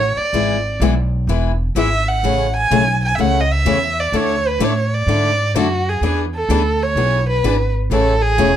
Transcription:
Already playing: A1 C#5
0.17 D5, muted upright bass stroke
0.33 G#1 E3 G#3 B3 E4 G#4
0.80 B1 E3 G#3 B3 E4 G#4
1.27 E1 E3 G#3 B3 E4 G#4
1.75 G#1 E3 G#3 B3 E4 G#4 E5
2.08 F#5
2.23 A1 C#3 E3 A3 C#4 G#4
2.57 G#5
2.71 B1 C#3 E3 A3 C#4 G#4
3.05 G#5
3.15 C#2 C#3 E3 A3 C#4 E5
3.20 G#4 F#5
3.41 D#5
3.52 E5
3.65 E2 C#3 E3 A3 C#4 G#4
4.00 D5
4.12 D2 D3 A3 D4 E4 A4 C#5
4.48 B4
4.59 A2 D3 A3 D4 E4 A4
4.65 C#5
4.94 D5
5.07 G#2 D3 A3 D4 E4 A4
5.54 F#2 D3 A3 D4 E4 F#4 A4
5.89 G#4
6.01 E2 E3 B3 D4 G#4
6.06 G#4
6.36 A4
6.49 D2 E3 B3 D4 G#4
6.83 C#5
6.95 B1 E3 B3 D4 G#4
7.30 B4
7.43 G#1 E3 B3 D4 G#4
7.90 A1 C#3 E3 A3 C#4 G#4 A4
8.22 G#4
8.38 E1 C#3 E3 A3 C#4 G#4

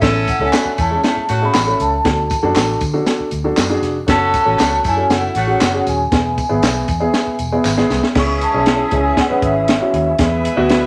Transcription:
Already playing: G#4 E5
0.01 A1 C#4 E4 A4, kick, snare, crash, tambourine
0.27 F#5, kick, closed hi-hat, tambourine
0.39 C#2 C#4 E4 A4 G#5
0.53 B3 D4 F#4, snare, clap, closed hi-hat, tambourine
0.65 muted fingered electric bass stroke
0.78 E2 A3 C#4 E4 A5, kick, closed hi-hat, tambourine
0.91 G#3 C#4 E4
1.03 A3 C#4 E4, snare, closed hi-hat, tambourine
1.17 muted fingered electric bass stroke
1.29 A2 A3 C#4 F#4, closed hi-hat, tambourine
1.41 C#4 E4 G#4 B5
1.54 A1, snare, clap, closed hi-hat, tambourine
1.67 C#4 E4 A4
1.80 C#2 A5, closed hi-hat, tambourine
2.04 D2 D4 F#4 A4, kick, snare, closed hi-hat, tambourine
2.30 kick, closed hi-hat, tambourine
2.43 F#2 D4 F#4 A4
2.56 A1, snare, clap, closed hi-hat, tambourine
2.81 D3, kick, closed hi-hat, tambourine
2.94 D4 F#4 A4
3.06 snare, closed hi-hat, tambourine
3.20 muted fingered electric bass stroke
3.31 D2, closed hi-hat, tambourine
3.44 D4 F#4 A4
3.56 F#2, snare, clap, closed hi-hat, tambourine
3.69 D4 F#4 G#4
3.82 F1, snare, closed hi-hat, tambourine
4.07 F#1 C#4 F#4 A4 A5, kick, snare, closed hi-hat, tambourine
4.34 A5, kick, closed hi-hat, tambourine
4.45 A1 C#4 F#4 A4
4.59 C#2 A3 C#4 F#4, snare, clap, closed hi-hat, tambourine
4.84 F#2 A3 C#4 E4 G#5, kick, closed hi-hat, tambourine
4.96 C#4 F#4 A4
5.10 F#1 A3 C#4 E4 F#5, snare, closed hi-hat, tambourine
5.35 A1 A3 C#4 F#4 F#5, closed hi-hat, tambourine
5.47 C#4 F#4 G#4
5.60 F#1, snare, clap, closed hi-hat, tambourine
5.74 C#4 F#4 G#4
5.87 D#1 G#5, snare, closed hi-hat, tambourine
6.12 E1 B3 E4 G#4, kick, snare, closed hi-hat, tambourine
6.38 kick, closed hi-hat, tambourine
6.49 G#1 B3 E4 G#4
6.63 B1, snare, clap, closed hi-hat, tambourine
6.88 E2, kick, closed hi-hat, tambourine
7.00 B3 E4 G#4
7.14 snare, closed hi-hat, tambourine
7.27 muted fingered electric bass stroke
7.39 E1, closed hi-hat, tambourine
7.52 B3 E4 G#4
7.65 G#1, snare, clap, tambourine
7.77 B3 E4 G#4, snare
7.90 C2, snare, tambourine
8.03 snare
8.14 C#2 E3 G#3 C#4 E4 G#4, kick, snare, crash
8.19 C#6
8.41 A5, closed hi-hat
8.54 B1 C#4 E4 G#4
8.66 snare, closed hi-hat
8.91 C#2 C#4 E4 G#4, kick, closed hi-hat
8.96 G#5
9.17 F#5, kick, snare, closed hi-hat
9.30 C#4 E4 B4, muted fingered electric bass stroke
9.42 G#1 E5, kick, closed hi-hat
9.68 snare, closed hi-hat
9.80 C#4 E4 F#4
9.93 D#2 E5, closed hi-hat
10.18 E2 E3 B3 E4 G#4 B4, kick, snare, closed hi-hat
10.45 closed hi-hat
10.56 D2 B3 E4 F#4
10.70 snare, closed hi-hat

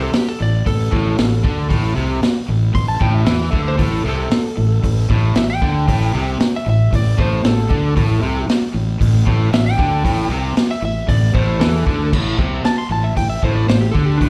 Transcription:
Already playing: C2 C3
0.02 A4
0.13 G4, muted fingered electric bass stroke, muted overdriven electric guitar stroke, snare, open hi-hat
0.28 A4
0.41 A1 A2 D5
0.66 A1 A2 A4, kick, open hi-hat
0.92 A1 A2, kick
1.18 A1 A2, snare, open hi-hat
1.44 D2 D3, kick
1.70 A1 A2, kick, open hi-hat
1.96 C2 C3
2.23 muted overdriven electric guitar stroke, muted fingered electric bass stroke, snare, open hi-hat
2.48 A1 A2
2.73 A1 A2 C6, kick, open hi-hat
2.88 A5
3.00 A1 A2 G5, kick
3.14 E5
3.26 E2 E3, snare, open hi-hat
3.51 D2 D3, kick
3.68 C5
3.78 A1 A2, kick, open hi-hat
3.82 A4
4.05 C2 C3 A4
4.31 muted overdriven electric guitar stroke, muted fingered electric bass stroke, snare, open hi-hat
4.57 A1 A2
4.83 A1 A2, kick, open hi-hat
5.10 A1 A2, kick
5.35 A1 A2 E5, snare, open hi-hat
5.50 G5
5.62 D2 D3, kick
5.88 A1 A2, kick, open hi-hat
6.14 C2 C3
6.40 muted overdriven electric guitar stroke, muted fingered electric bass stroke, snare, open hi-hat
6.56 E5
6.66 A1 A2 E5
6.93 A1 A2 D5, kick, open hi-hat
7.18 A1 A2 C5, kick
7.44 A1 A2 A4, snare, open hi-hat
7.70 D2 D3, kick
7.96 A1 A2, kick, open hi-hat
8.22 C2 C3
8.48 muted overdriven electric guitar stroke, muted fingered electric bass stroke, snare, open hi-hat
8.74 A1 A2
9.01 A1 A2, kick, open hi-hat
9.27 A1 A2, kick
9.53 A1 A2 E5, snare, open hi-hat
9.66 G5
9.79 D2 D3, kick
10.05 A1 A2, kick, open hi-hat
10.30 C2 C3
10.57 muted fingered electric bass stroke, muted overdriven electric guitar stroke, snare, open hi-hat
10.71 E5
10.82 A1 A2 E5
11.08 A1 A2 D5, kick, open hi-hat
11.34 A1 A2 C5, kick
11.59 E2 E3 A4, snare, open hi-hat
11.86 D2 D3, kick
12.13 A1 A2, kick, crash
12.38 C2 C3, kick
12.64 A5, muted fingered electric bass stroke, muted overdriven electric guitar stroke, snare, open hi-hat
12.78 C6
12.89 A1 A2 A5
13.04 E5
13.16 A1 A2 G5, kick, open hi-hat
13.30 E5
13.43 A1 A2 C5, kick
13.55 D5
13.68 A1 A2 C5, snare, open hi-hat
13.81 G4
13.91 D2 D3 A4, kick
14.05 G4
14.18 A1 A2 D4, kick, open hi-hat

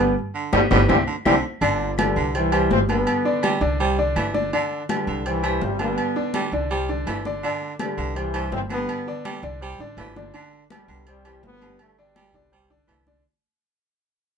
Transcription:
Already playing: G1 D3 B3
0.00 G3 G4 B4
0.34 D3
0.52 G1 B2 D3 G3 B3 D4 G4, high conga, high timbale, claves
0.70 G1 B2 D3 E3 G3 B3 D4 G4, high conga, high timbale, claves
0.88 C2 D3 E3 G3 C4 D4 E4, high conga, high timbale, claves
1.07 D3
1.24 C2 D3 E3 G3 C4 D4 E4, high conga, high timbale, claves
1.61 G1 D3 D4 D5, high conga, low agogo
1.81 high conga
1.98 G2 D3 G3 G4 B4, high conga, low timbale, low agogo, claves
2.16 C2 D3, high conga
2.34 G2 E3 G3 G4 C5, high conga, low agogo
2.52 E3 G3 G4 C5, high conga, low agogo, claves
2.71 G1 E3 C4, high conga, low timbale
2.89 D3 G3 B3 G4 B4, high conga, low agogo
3.07 high conga, low agogo, claves
3.25 D3 D4 D5, high conga
3.43 G3, high conga, low timbale, low agogo, claves
3.61 C2 D3 D4 D5, high conga
3.80 G3 G4 C5, high conga, low agogo
3.99 D3 D4 D5, high conga
4.16 G1 E3, high conga, low timbale, low agogo, claves
4.34 D3 D4 D5, high conga
4.53 D3 D4 D5, high conga, low agogo
4.71 high conga
4.89 G2 D3 G3 G4 B4, high conga, low timbale, low agogo, claves
5.07 C2 D3, high conga
5.25 G2 E3 G3 G4 C5, high conga, low agogo
5.43 E3 G3 G4 C5, high conga, low agogo, claves
5.61 G1 C3 G3, high conga, low timbale
5.79 D3 G3 B3 G4 B4, high conga, low agogo
5.97 high conga, low agogo, claves
6.16 D3 D4 D5, high conga
6.34 G3, high conga, low timbale, low agogo, claves
6.52 C2 D3 D4 D5, high conga
6.70 G3 G4 C5, high conga, low agogo
6.88 D3 D4 D5, high conga
7.06 G1 E3, high conga, low timbale, low agogo, claves
7.25 D3 D4 D5, high conga
7.43 D3 D4 D5, high conga, low agogo
7.62 high conga
7.79 G2 D3 G3 G4 B4, high conga, low timbale, low agogo, claves
7.98 C2 D3, high conga
8.16 G2 E3 G3 G4 C5, high conga, low agogo
8.33 E3 G3 G4 C5, high conga, low agogo, claves
8.52 G1 E3 C4, high conga, low timbale
8.70 D3 G3 B3 G4 B4, high conga, low agogo
8.88 high conga, low agogo, claves
9.07 D3 D4 D5, high conga
9.25 G3, high conga, low timbale, low agogo, claves
9.43 C2 D3 D4 D5, high conga
9.61 G3 G4 C5, high conga, low agogo
9.79 A1 D3 D4 D5, high conga
9.97 G1 E3, high conga, low timbale, low agogo, claves
10.16 D3 D4 D5, high conga
10.34 D3 D4 D5, high conga, low agogo
10.53 high conga
10.70 B2 G3 G4 B4, high conga, low timbale, low agogo, claves
10.88 C2 D3, high conga
11.07 C3 G3 G4 C5, high conga, low agogo
11.25 E3 G3 G4 C5, high conga, low agogo, claves
11.43 G1 D3 B3, high conga, low timbale
11.61 D3 G3 G4 B4, high conga, low agogo
11.79 D3 A3, high conga, low agogo, claves
11.98 B2 D3 G3 D4 D5, high conga
12.16 G3, high conga, low timbale, low agogo, claves
12.33 C2 D3 D4 D5
12.52 G3 G4 C5, high conga, low agogo
12.70 D3 D4 D5, high conga
12.88 C2 E3, high conga, low timbale, low agogo, claves
13.07 D3 D4 D5, high conga

